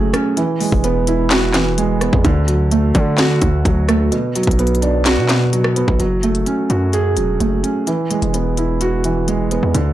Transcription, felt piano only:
Already playing: F#3 A3 C#4 F#4 G#4
0.13 C#4
0.37 E3
0.61 G#3
0.84 B3
1.08 E4
1.31 F#4
1.55 E3
1.78 G#3
2.02 B3
2.25 D3
2.48 F#3
2.72 A3
2.95 D4
3.18 F#4
3.42 D3
3.65 F#3
3.89 A3
4.12 B2
4.36 F#3
4.59 B3
4.82 D4
5.06 F#4
5.29 B2
5.53 F#3
5.76 B3
6.00 F#3
6.23 A3
6.47 C#4
6.70 F#4
6.93 G#4
7.17 F#3
7.40 A3
7.63 C#4
7.87 E3
8.11 G#3
8.34 B3
8.58 E4
8.81 F#4
9.05 E3
9.28 G#3
9.51 B3
9.74 D3

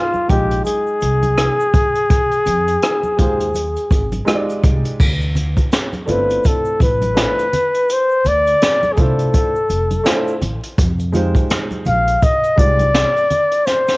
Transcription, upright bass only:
0.30 A#1
1.02 C2
2.46 F2
3.19 D#2
3.90 G#1
4.64 C2
5.00 D2
6.09 G1
6.80 A1
8.26 D2
8.97 C2
9.70 F1
10.41 A1
10.78 F2
11.86 A#1
12.58 C2

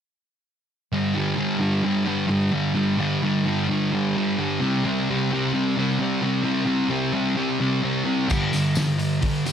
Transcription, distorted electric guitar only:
0.92 G2 D3 G3
1.14 G2 D3 G3
1.36 G2 D3 G3
1.59 G2 D3 G3
1.83 G2 D3 G3
2.05 G2 D3 G3
2.27 G2 D3 G3
2.51 G2 D3 G3
2.74 G2 D3 G3
2.98 G2 D3 G3
3.23 G2 D3 G3
3.45 G2 D3 G3
3.68 G2 D3 G3
3.92 G2 D3 G3
4.15 G2 D3 G3
4.38 G2 D3 G3
4.60 C3 G3 C4
4.84 C3 G3 C4
5.09 C3 G3 C4
5.31 C3 G3 C4
5.53 C3 G3 C4
5.76 C3 G3 C4
5.99 C3 G3 C4
6.21 C3 G3 C4
6.43 C3 G3 C4
6.65 C3 G3 C4
6.88 C3 G3 C4
7.13 C3 G3 C4
7.35 C3 G3 C4
7.60 C3 G3 C4
7.82 C3 G3 C4
8.04 C3 G3 C4
8.28 G2 D3 G3
8.53 G2 D3
8.77 G2 D3
8.99 G2 D3
9.21 G2 D3
9.46 G2 D3

